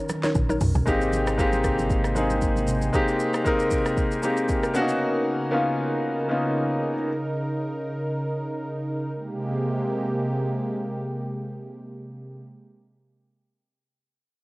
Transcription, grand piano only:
0.86 G#3 A#3 C4 D#4 G4
1.37 G#3 A#3 C4 D#4 G4
2.15 G#3 A#3 C4 D#4 G#4
2.93 G#3 A#3 C4 D#4 G4
3.44 G#3 A#3 C4 D#4 A#4
4.22 G#3 A#3 C4 D#4 G4
4.74 A#3 B3 C#4 D4 F#4
4.82 D#4
5.51 A#3 B3 C#4 D#4 F4
6.29 A#3 B3 C#4 D#4 F4

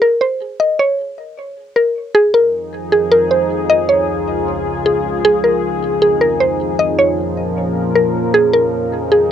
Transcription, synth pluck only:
0.02 A#4
0.21 C5
0.60 D#5
0.79 C#5
1.76 A#4
2.15 G#4
2.34 A#4
2.92 G#4
3.12 A#4
3.31 C5
3.70 D#5
3.89 C#5
4.86 G#4
5.25 G#4
5.44 A#4
6.02 G#4
6.21 A#4
6.40 C5
6.79 D#5
6.99 C#5
7.95 A#4
8.34 G#4
8.53 A#4
9.12 G#4

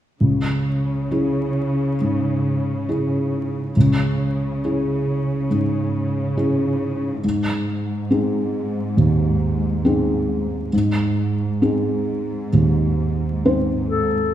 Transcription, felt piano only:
0.21 C#2
1.11 C#4 E4 G#4
2.01 G#2
2.89 C#4 E4 G#4
3.76 C#2
4.64 C#4 E4 G#4
5.50 G#2
6.37 C#4 E4 G#4
7.24 G#2
8.10 C4 D#4 G#4
8.97 D#2
9.85 C4 D#4 G#4
10.73 G#2
11.62 C4 D#4 G#4
12.53 D#2
13.45 C4 D#4 C5

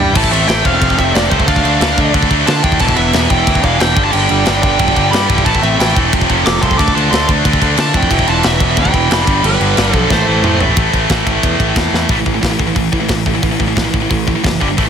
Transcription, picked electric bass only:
Already playing: G2
0.15 A1
0.31 A1
0.48 A1
0.65 E1
0.81 F1
0.99 F1
1.15 F1
1.32 C#2
1.48 D2
1.64 D2
1.81 D2
1.97 D2
2.14 D2
2.30 D2
2.48 D3
2.64 D#2
2.80 E1
2.97 E1
3.13 E1
3.30 E1
3.47 D2
3.64 E1
3.80 E1
3.96 G1
4.14 G1
4.30 G1
4.47 G1
4.63 G1
4.79 G1
4.96 G1
5.13 G2
5.29 G1
5.46 A1
5.63 A1
5.79 A1
5.96 E1
6.13 F1
6.30 F1
6.45 F1
6.63 C2
6.79 D2
6.96 D2
7.12 D2
7.28 D2
7.45 D2
7.62 D2
7.78 D3
7.94 F2
8.11 E1
8.28 E1
8.44 E1
8.60 E1
8.77 D2
8.94 E1
9.09 F1
9.27 G1
9.43 G1
9.60 G1
9.77 G1
9.93 B1
10.10 A1
10.27 A1
10.42 A2
10.59 A1
10.77 A1
10.94 A1
11.10 A1
11.26 A1
11.44 E2
11.60 A1
11.76 E2
11.93 E2
12.09 A1
12.26 A1
12.43 A1
12.59 A1
12.76 A1
12.93 A1
13.09 A1
13.26 A1
13.43 A1
13.60 A1
13.76 A1
13.94 A1
14.11 A1
14.44 F#1
14.61 G1
14.78 A1

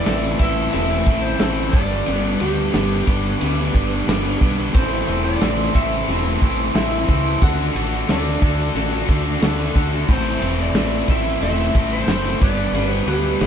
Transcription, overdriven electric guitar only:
0.05 A2 E3 C4 E4 A4
0.38 A2 E3 C4 E4 A4
0.72 A2 E3 C4 E4 A4
1.06 A2 E3 C4 E4 A4
1.38 A2 E3 C4 E4 A4
1.72 G2 D3 G3 B3 D4 G4
2.06 G2 D3 G3 B3 D4 G4
2.40 G2 D3 G3 B3 D4 G4
2.72 G2 D3 G3 B3 D4 G4
3.04 G2 D3 G3 B3 D4 G4
3.39 G2 D3 G3 B3 D4 G4
3.73 G2 D3 G3 B3 D4 G4
4.07 G2 D3 G3 B3 D4 G4
4.40 G2 D3 G3 B3 D4 G4
4.73 A2 E3 C4 E4 A4
5.07 A2 E3 C4 E4 A4
5.41 A2 E3 C4 E4 A4
5.74 A2 E3 C4 E4 A4
6.09 A2 E3 C4 E4 A4
6.42 A2 E3 C4 E4 A4
6.74 A2 E3 C4 E4 A4
7.08 A2 E3 C4 E4 A4
7.42 D3 D4 F#4 A4
7.75 D3 D4 F#4 A4
8.08 D3 D4 F#4 A4
8.43 D3 D4 F#4 A4
8.74 D3 D4 F#4 A4
9.08 D3 D4 F#4 A4
9.41 D3 D4 F#4 A4
9.74 D3 D4 F#4 A4
10.08 A2 A3 C4 E4 C5
10.42 A2 A3 C4 E4 C5
10.75 A2 A3 C4 E4 C5
11.09 A2 A3 C4 E4 C5
11.43 A2 A3 C4 E4 C5
11.75 A2 A3 C4 E4 C5
12.09 A2 A3 C4 E4 C5
12.42 G3 B3 D4 B4
12.75 G3 B3 D4 B4
13.07 G3 B3 D4 B4
13.41 G3 B3 D4 B4

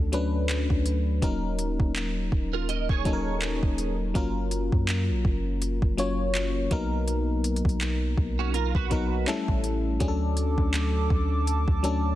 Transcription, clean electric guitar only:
2.53 F4 A#4
2.69 A#4 D#5
2.90 G#4 C#5
8.39 C#4 F#4
8.54 F4 A#4
8.75 F#4 B4

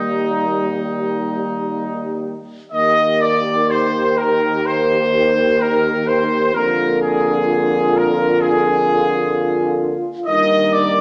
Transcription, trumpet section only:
Already playing: D#4
2.72 D#5
3.21 D5
3.70 C5
4.17 A#4
4.66 C5
5.60 A#4
6.07 C5
6.54 A#4
7.01 G#4
7.95 A#4
8.40 G#4
10.26 D#5
10.73 D5

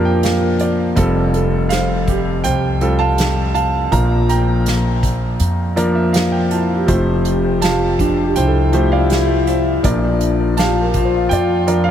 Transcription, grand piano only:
Already playing: A#1 A#2 F3 A#3 D4 F4 G4 A#4 A5
0.05 G5
0.23 F5
0.61 D5
0.96 F1 F2 G3 C4 F4 A4
1.69 C5 F5
2.44 C5 G5
2.81 G3 C4 F4 A4
2.99 F5 A5
3.54 F5 A5
3.91 A#1 A#2 F3 A#3 D4 A#4 F5 A#5
4.29 G5 A#5
5.76 F3 A#3 D4 A#4 D5
5.95 E5
6.13 F5
6.32 G5
6.51 A5
6.87 F1 F2 F3 A3 G4 C5
7.62 F5 A5
8.36 C5 G5
8.73 F3 A3 G4 C5
8.92 D5 F5
9.48 C5 E5
9.83 A#1 A#2 F3 D4 A#4 D5
10.57 F5 A5
11.29 D5 G5
11.67 F3 D4 A#4 D5
11.84 F5

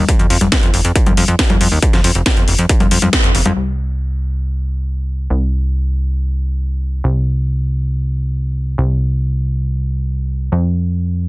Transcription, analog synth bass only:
0.19 F2
0.30 F2
0.41 F1
0.63 F2
0.74 F1
0.85 F2
1.06 F2
1.17 F2
1.28 F2
1.50 F2
1.61 F2
1.72 D#2
1.93 F2
2.04 F2
2.15 F1
2.37 F2
2.48 F1
2.59 F2
2.80 F2
2.91 F2
3.02 F2
3.24 F2
3.35 F1
3.46 F2
3.56 C2
5.30 C2
7.04 C2
8.78 C2
10.52 F2

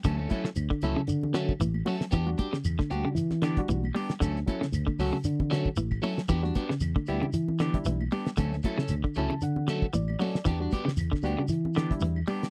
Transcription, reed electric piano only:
0.29 F#3 C#4 E4
0.83 F#3 C#4 E4
1.33 F#3 C#4 F#4
1.86 F#3 C#4 F#4
2.12 D4 F#4
2.27 G3 D4 F#4
2.91 G3 D4 F#4
3.58 G3 D4 F#4
4.46 F#3 C#4 E4
4.99 F#3 C#4 F#4
5.53 F#3 C#4 F#4
6.02 F#3 C#4 E4
6.30 D4 F#4
6.43 G3 D4 F#4
7.08 G3 D4 E4
7.74 G3 D4 E4
8.65 F#3 C#4 E4
9.18 F#3 C#4 E4 A5
9.43 F#5
9.68 F#3 C#4 F#4
9.95 D5
10.20 F#3 C#4 F#4 D5
10.46 D4 F#4
10.60 G3 D4 F#4
11.24 G3 D4 F#4
11.90 G3 D4 E4

